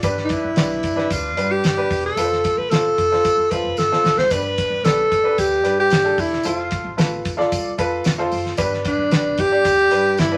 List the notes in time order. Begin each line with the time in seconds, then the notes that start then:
0.03 G1 G2 D4 G4 B4, kick, closed hi-hat, tambourine
0.18 snare
0.25 D#4
0.29 E4, kick, closed hi-hat, tambourine
0.44 B1
0.56 B1 D4 G4 B4, snare, closed hi-hat, tambourine
0.83 G1, kick, closed hi-hat, tambourine
0.96 D4 G4 B4, snare
1.10 D2 F4, kick, closed hi-hat, tambourine
1.37 G2 D4 G4 B4, closed hi-hat, tambourine
1.51 G4
1.64 G2, snare, closed hi-hat, tambourine
1.77 D4 G4 B4
1.91 E1, kick, open hi-hat, tambourine
2.06 A4
2.16 F1 F4 A4 B4, closed hi-hat, tambourine
2.24 C5
2.33 snare
2.44 kick, closed hi-hat, tambourine
2.58 A1 B4
2.70 A1 F4 A4 C5, snare, closed hi-hat, tambourine
2.98 F1, kick, closed hi-hat, tambourine
3.12 F4 A4 C5, snare
3.24 kick, closed hi-hat, tambourine
3.37 F2
3.50 F1 F4 A4 B4 C5, kick, closed hi-hat, tambourine
3.64 F1
3.77 G1 A4, snare, tambourine
3.92 F4 A4 C5, snare
4.04 A1, snare, tambourine
4.17 C2 C5, snare
4.30 G1 G2 D4 G4 B4, kick, closed hi-hat, tambourine
4.58 kick, closed hi-hat, tambourine
4.70 B1
4.83 B1 D4 G4 A4 B4, snare, closed hi-hat, tambourine
5.12 G1, kick, closed hi-hat, tambourine
5.24 D4 G4 B4
5.38 D2 G4, kick, closed hi-hat, tambourine
5.63 G2 D4 G4 B4, closed hi-hat, tambourine
5.80 G4
5.90 G2, snare, closed hi-hat, tambourine
6.04 D4 G4 A4
6.18 E1 E4, kick, open hi-hat, tambourine
6.33 snare
6.43 F1 F4 A4 C5, closed hi-hat, tambourine
6.71 kick, closed hi-hat, tambourine
6.84 A1
6.97 A1 F4 A4 B4, snare, closed hi-hat, tambourine
7.25 F1, kick, closed hi-hat, tambourine
7.37 F4 A4 D5, snare
7.52 C2, kick, closed hi-hat, tambourine
7.78 F2 F4 A4 B4, kick, closed hi-hat, tambourine
8.04 F2, snare, closed hi-hat, tambourine
8.18 F4 A4 C5
8.32 F#1, open hi-hat, tambourine
8.46 snare
8.57 G1 G2 D4 G4 B4, kick, closed hi-hat, tambourine
8.74 snare
8.85 D4, kick, closed hi-hat, tambourine
8.98 B1
9.11 B1 D4 G4 B4, snare, closed hi-hat, tambourine
9.38 G1 G4, kick, closed hi-hat, tambourine
9.52 D4 G4 D5
9.65 D2, kick, closed hi-hat, tambourine
9.91 G2 D4 G4 B4, closed hi-hat, tambourine
10.17 G2 E4, snare, closed hi-hat, tambourine
10.32 D4 G4 B4